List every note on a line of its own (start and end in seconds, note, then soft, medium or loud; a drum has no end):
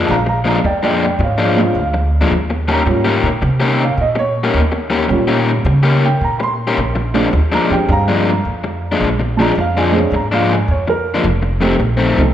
0.00 0.14 A#2 medium
0.00 0.14 F3 medium
0.00 0.14 G#3 medium
0.00 0.14 D4 medium
0.06 0.57 A#1 medium
0.06 0.27 F5 medium
0.06 0.10 A5 medium
0.11 0.27 A#5 loud
0.26 0.45 F5 medium
0.26 0.46 A#5 medium
0.26 muted overdriven electric guitar stroke soft
0.44 0.57 A#2 medium
0.44 0.57 F3 medium
0.44 0.58 G#3 medium
0.44 0.58 D4 medium
0.44 0.64 F5 medium
0.44 0.65 A#5 medium
0.64 1.13 F2 medium
0.64 0.82 D5 medium
0.64 0.83 G5 medium
0.64 muted overdriven electric guitar stroke soft
0.83 1.05 A#2 medium
0.83 1.05 F3 medium
0.83 1.04 G#3 medium
0.83 1.04 D4 medium
0.83 1.01 D5 medium
0.83 1.02 G5 medium
1.03 1.20 D5 medium
1.03 1.21 G5 medium
1.19 1.68 G#2 medium
1.19 muted overdriven electric guitar stroke soft
1.23 1.39 C#5 medium
1.23 1.40 F5 medium
1.38 1.60 A#2 medium
1.38 1.60 F3 medium
1.38 1.60 G#3 medium
1.38 1.60 D4 medium
1.42 1.58 C#5 medium
1.42 1.59 F5 medium
1.57 1.74 G#3 medium
1.57 1.74 C4 medium
1.57 1.74 D4 medium
1.57 1.74 F4 medium
1.57 1.76 C#5 medium
1.61 1.77 F5 medium
1.75 2.24 D2 medium
1.79 2.31 F5 medium
1.94 muted overdriven electric guitar stroke medium
2.21 2.32 A#2 medium
2.21 2.31 F3 medium
2.21 2.31 G#3 medium
2.21 2.31 D4 medium
2.31 2.80 D#2 medium
2.50 muted overdriven electric guitar stroke soft
2.68 2.80 D#3 medium
2.68 2.80 A#3 medium
2.68 2.81 C#4 medium
2.68 2.81 G4 loud
2.68 2.72 A5 medium
2.73 3.79 A#5 loud
2.86 3.19 G#2 medium
2.86 3.20 G3 medium
2.86 3.20 A#3 medium
2.86 3.21 C#4 medium
2.86 3.20 F4 medium
2.86 muted overdriven electric guitar stroke soft
3.05 3.27 D#3 medium
3.05 3.27 A#3 medium
3.05 3.27 C#4 medium
3.05 3.27 G4 medium
3.23 3.40 A#2 medium
3.42 3.91 C3 medium
3.42 muted overdriven electric guitar stroke soft
3.60 3.83 D#3 medium
3.60 3.83 A#3 medium
3.60 3.83 C#4 medium
3.60 3.82 G4 loud
3.84 4.00 F5 medium
3.97 4.47 A#2 medium
3.97 4.18 D#5 medium
4.15 4.72 C#5 loud
4.15 muted overdriven electric guitar stroke soft
4.44 4.60 D#3 medium
4.44 4.59 A#3 medium
4.44 4.59 C#4 medium
4.44 4.59 G4 medium
4.54 5.03 D#2 medium
4.72 muted overdriven electric guitar stroke medium
4.90 5.03 D#3 medium
4.90 5.03 A#3 medium
4.90 5.03 C#4 medium
4.90 5.03 G4 medium
5.09 5.59 A#2 medium
5.09 5.95 G3 medium
5.09 5.95 A#3 medium
5.09 5.95 C#4 medium
5.09 5.96 F4 medium
5.09 muted overdriven electric guitar stroke soft
5.28 5.50 D#3 medium
5.28 5.50 A#3 medium
5.28 5.50 C#4 medium
5.28 5.50 G4 medium
5.65 6.14 C#3 loud
5.65 muted overdriven electric guitar stroke soft
5.83 6.06 D#3 medium
5.83 6.06 A#3 medium
5.83 6.06 C#4 medium
5.83 6.05 G4 loud
6.05 6.22 G5 loud
6.21 6.70 A#2 medium
6.21 6.41 A#5 medium
6.38 6.45 B5 medium
6.38 muted overdriven electric guitar stroke soft
6.43 7.50 C6 medium
6.67 6.78 D#3 medium
6.67 6.78 A#3 medium
6.67 6.77 C#4 medium
6.67 6.77 G4 medium
6.77 7.26 A#1 medium
6.95 muted overdriven electric guitar stroke soft
7.14 7.27 A#2 medium
7.14 7.27 F3 medium
7.14 7.31 G#3 medium
7.14 7.27 G#3 medium
7.14 7.31 C4 medium
7.14 7.31 D4 medium
7.14 7.27 D4 medium
7.14 7.32 F4 medium
7.33 7.66 D#2 medium
7.33 muted overdriven electric guitar stroke soft
7.52 7.74 A#2 medium
7.52 7.74 F3 medium
7.52 7.74 G#3 medium
7.52 7.73 D4 medium
7.52 7.71 A#5 medium
7.69 7.87 F2 medium
7.69 8.41 C4 medium
7.69 8.41 D4 medium
7.69 8.41 G4 medium
7.69 8.41 G#4 medium
7.69 7.90 G5 medium
7.89 8.38 G2 loud
7.89 8.98 F5 medium
7.89 8.99 A#5 loud
7.89 muted overdriven electric guitar stroke soft
8.08 8.30 A#2 medium
8.08 8.30 F3 medium
8.08 8.29 G#3 loud
8.08 8.30 D4 loud
8.45 8.94 F2 medium
8.64 muted overdriven electric guitar stroke soft
8.92 9.07 A#2 medium
8.92 9.07 F3 medium
8.92 9.07 G#3 medium
8.92 9.07 D4 medium
9.00 9.49 A#1 medium
9.20 muted overdriven electric guitar stroke soft
9.37 9.51 A#2 medium
9.37 9.51 F3 medium
9.37 9.54 G#3 medium
9.37 9.51 G#3 medium
9.37 9.55 C4 medium
9.37 9.55 D4 medium
9.37 9.51 D4 medium
9.37 9.55 F4 medium
9.37 9.42 A5 medium
9.42 9.58 A#5 loud
9.55 10.05 F2 medium
9.55 muted overdriven electric guitar stroke soft
9.60 9.77 F5 medium
9.77 9.98 A#2 medium
9.77 9.98 F3 medium
9.77 9.98 G#3 medium
9.77 9.98 D4 medium
9.77 9.95 G#5 medium
9.92 10.10 G#3 medium
9.92 10.10 C4 medium
9.92 10.10 D4 medium
9.92 10.10 G#4 medium
9.97 10.14 C#5 medium
10.12 10.61 G#2 medium
10.12 10.32 A#5 medium
10.12 muted overdriven electric guitar stroke soft
10.32 10.54 A#2 medium
10.32 10.54 F3 medium
10.32 10.54 G#3 medium
10.32 10.53 D4 loud
10.32 10.51 F5 loud
10.52 10.69 G#5 medium
10.68 11.17 F2 medium
10.68 10.88 C#5 medium
10.88 11.43 A#4 loud
10.88 muted overdriven electric guitar stroke soft
11.14 11.25 A#2 medium
11.14 11.25 F3 medium
11.14 11.24 G#3 medium
11.14 11.24 D4 medium
11.24 11.73 F1 loud
11.42 muted overdriven electric guitar stroke soft
11.60 11.73 F2 medium
11.60 11.74 D#3 medium
11.60 11.78 A3 medium
11.60 11.74 A3 loud
11.60 11.78 C4 medium
11.60 11.74 C4 medium
11.60 11.78 D#4 medium
11.60 11.78 G4 medium
11.79 12.13 A#1 medium
11.79 muted overdriven electric guitar stroke soft
11.97 12.20 F2 medium
11.97 12.20 D#3 medium
11.97 12.20 A3 medium
11.97 12.20 C4 medium
12.17 12.34 C2 medium
12.17 12.34 A3 medium
12.17 12.34 C4 medium
12.17 12.34 D#4 medium
12.17 12.34 A4 medium